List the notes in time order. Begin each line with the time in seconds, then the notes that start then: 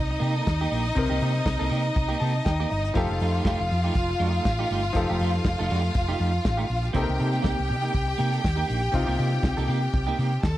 Already playing: C2 C3 C4 D#4 A#4 D#5
0.11 muted clean electric guitar stroke
0.20 C3 A#3 D#4 G4, open hi-hat
0.35 A#3 D#4 A4, closed hi-hat
0.47 D#2, muted clean electric guitar stroke, kick, snare, closed hi-hat
0.61 A#3 D#4 G4
0.72 A#1 A#3 D#4 G4, open hi-hat
0.86 muted clean electric guitar stroke, closed hi-hat
0.95 C2 C3 C4 D#4 A#4, muted clean electric guitar stroke, kick, closed hi-hat
1.10 C2 A#3 D#4 G4
1.21 C3 A#3 D#4 G4, open hi-hat
1.35 snare, closed hi-hat
1.46 C2, muted clean electric guitar stroke, kick, snare, closed hi-hat
1.59 C2 A#3 D#4 A4
1.70 C3 A#3 D#4 G4, open hi-hat
1.84 muted clean electric guitar stroke, closed hi-hat
1.95 C2, muted clean electric guitar stroke, kick, closed hi-hat
2.08 A#3 D#4 G4
2.20 C3 A#3 D#4 G4 A5, open hi-hat
2.35 muted clean electric guitar stroke, closed hi-hat
2.45 D#2 G5, muted clean electric guitar stroke, kick, snare, closed hi-hat
2.60 A#3 D#4 G4
2.70 G1 D#5, muted clean electric guitar stroke, open hi-hat
2.84 muted clean electric guitar stroke, closed hi-hat
2.94 F1 F3 A3 D#4 F4 G4 A4 F5, kick, closed hi-hat
2.98 G4
3.10 F1, muted clean electric guitar stroke
3.20 F2 A3 D#4 A4, open hi-hat
3.34 A3 D#4 G4, closed hi-hat
3.45 F1 A3 D#4 G4, kick, snare, closed hi-hat
3.60 F1, muted clean electric guitar stroke
3.70 F2, muted clean electric guitar stroke, open hi-hat
3.84 A3 D#4 G4, closed hi-hat
3.95 F1, muted clean electric guitar stroke, kick, closed hi-hat
4.09 muted clean electric guitar stroke
4.20 F2 A3 D#4 G4, open hi-hat
4.33 A3 D#4 A4, closed hi-hat
4.45 A1, muted clean electric guitar stroke, kick, snare, closed hi-hat
4.59 A3 D#4 G4
4.70 G1 A3 D#4 G4, open hi-hat
4.84 closed hi-hat
4.93 F1 F3 D#4 G4 A4, muted clean electric guitar stroke, kick, closed hi-hat
5.10 F1 A3 D#4 G4
5.19 F2 A3 D#4 G4, open hi-hat
5.34 snare, closed hi-hat
5.44 F1, muted clean electric guitar stroke, kick, snare, closed hi-hat
5.59 F1 A3 D#4 A4
5.70 F2 A3 D#4 G4, open hi-hat
5.83 muted clean electric guitar stroke, closed hi-hat
5.94 F1, muted clean electric guitar stroke, kick, closed hi-hat
6.08 A3 D#4 G4
6.19 F2 A3 D#4, open hi-hat
6.34 closed hi-hat
6.44 A1, muted clean electric guitar stroke, kick, snare, closed hi-hat
6.57 A3 D#4 G4
6.68 A#1, muted clean electric guitar stroke, open hi-hat
6.83 muted clean electric guitar stroke, closed hi-hat
6.93 C2 C3 A#3 C4 D#4 G4 A4 G5, kick, closed hi-hat
7.02 A#4
7.08 C2, muted clean electric guitar stroke
7.18 C3 A#3 D#4 A4, open hi-hat
7.32 A#3 D#4 G4, snare, closed hi-hat
7.42 C2 A#3 D#4 G4, kick, snare, closed hi-hat
7.57 C2, muted clean electric guitar stroke
7.68 C3, muted clean electric guitar stroke, open hi-hat
7.82 A#3 D#4 G4, closed hi-hat
7.93 C2, muted clean electric guitar stroke, kick, closed hi-hat
8.07 muted clean electric guitar stroke
8.18 C3 A#3 D#4 G4, open hi-hat
8.31 A#3 D#4 A4, closed hi-hat
8.43 D#2, muted clean electric guitar stroke, kick, snare, closed hi-hat
8.56 A#3 D#4 G4
8.67 A#1 A#3 D#4 G4, open hi-hat
8.82 muted clean electric guitar stroke, closed hi-hat
8.92 C2 C3 C4 D#4 F4, muted clean electric guitar stroke, kick, closed hi-hat
9.07 C2 A#3 D#4 G4
9.18 C3 A#3 D#4 G4, open hi-hat
9.32 muted clean electric guitar stroke, snare, closed hi-hat
9.43 C2, muted clean electric guitar stroke, kick, snare, closed hi-hat
9.57 C2 A#3 D#4 A4
9.68 C3 A#3 D#4 G4, open hi-hat
9.82 muted clean electric guitar stroke, closed hi-hat
9.93 C2, muted clean electric guitar stroke, kick, closed hi-hat
10.07 A#3 D#4 G4
10.19 C3 A#3 D#4 G4, open hi-hat
10.32 closed hi-hat
10.43 D#2 A4 A5, muted clean electric guitar stroke, kick, snare, closed hi-hat